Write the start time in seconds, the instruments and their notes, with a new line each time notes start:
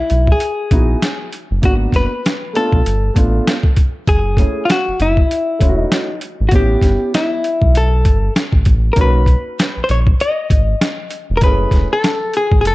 Already playing: hollow-body jazz guitar E4
0.10 analog synth bass B1, closed hi-hat
0.27 kick
0.32 hollow-body jazz guitar G#4
0.40 closed hi-hat
0.71 analog synth bass A#1, upright piano B3 D#4 E4 F#4, kick, closed hi-hat
1.02 snare, closed hi-hat
1.33 closed hi-hat
1.51 analog synth bass F#1
1.62 analog synth bass G#1, upright piano A#3 B3 D4 F#4, hollow-body jazz guitar F#4, kick, closed hi-hat
1.92 analog synth bass F#1, hollow-body jazz guitar B4, kick, snare, closed hi-hat
2.26 snare, closed hi-hat
2.53 upright piano A3 B3 D4 F4, hollow-body jazz guitar A4, closed hi-hat
2.73 analog synth bass B1, kick
2.86 analog synth bass G1, closed hi-hat
3.14 analog synth bass A1, upright piano A3 B3 D4 F4, kick, closed hi-hat
3.48 snare, closed hi-hat
3.63 kick
3.77 kick, closed hi-hat
4.07 analog synth bass F#1, hollow-body jazz guitar G#4, kick, closed hi-hat
4.37 upright piano A3 C#4 E4 G#4, kick, closed hi-hat
4.65 hollow-body jazz guitar F4
4.70 hollow-body jazz guitar F#4, snare, closed hi-hat
4.88 analog synth bass F#1
5.00 analog synth bass F#1, hollow-body jazz guitar E4, closed hi-hat
5.17 kick
5.31 closed hi-hat
5.59 analog synth bass E1, upright piano A3 C#4 E4 F4, kick, closed hi-hat
5.69 upright piano F#4
5.79 hollow-body jazz guitar D#4
5.92 snare, closed hi-hat
6.21 closed hi-hat
6.41 analog synth bass G#1
6.49 analog synth bass A1, upright piano B3 C#4, hollow-body jazz guitar F#4, kick, closed hi-hat
6.53 upright piano E4 G4, hollow-body jazz guitar G4
6.82 analog synth bass G1, kick, snare, closed hi-hat
7.14 hollow-body jazz guitar E4, snare, closed hi-hat
7.44 closed hi-hat
7.62 analog synth bass B1, kick
7.75 hollow-body jazz guitar A4, closed hi-hat
8.05 analog synth bass G1, kick, closed hi-hat
8.36 snare, closed hi-hat
8.52 analog synth bass A1, kick
8.65 analog synth bass A1, kick, closed hi-hat
8.93 analog synth bass B1, upright piano A#3 C#4, hollow-body jazz guitar A#4, kick, closed hi-hat
8.98 upright piano D#4 F#4, hollow-body jazz guitar B4
9.26 kick, closed hi-hat
9.59 snare, closed hi-hat
9.77 analog synth bass A#1
9.84 hollow-body jazz guitar C5
9.89 analog synth bass A#1, hollow-body jazz guitar C#5, closed hi-hat
10.07 kick
10.20 hollow-body jazz guitar D#5, closed hi-hat
10.50 analog synth bass G#1, kick, closed hi-hat
10.81 snare, closed hi-hat
11.11 closed hi-hat
11.30 analog synth bass E1
11.37 hollow-body jazz guitar A#4, closed hi-hat
11.42 analog synth bass F#1, upright piano A3 C#4 E4 G#4, hollow-body jazz guitar B4, kick
11.71 analog synth bass E1, kick, snare, closed hi-hat
11.93 hollow-body jazz guitar A4
12.04 snare, closed hi-hat
12.34 hollow-body jazz guitar G#4, closed hi-hat
12.52 analog synth bass A1, kick
12.61 analog synth bass F1, hollow-body jazz guitar G#4
12.65 hollow-body jazz guitar A4, closed hi-hat